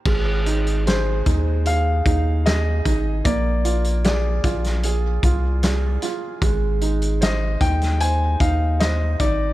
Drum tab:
CC |x---------------|----------------|----------------|
HH |--xxx-x-x-x-x-x-|x-xxx-xxx-x-x-x-|x-xxx-xxx-x-x-x-|
SD |----o-------o---|----o--o----o---|----o--o----o---|
BD |o-----o---o---o-|o-----o---o-----|o-----o---o---o-|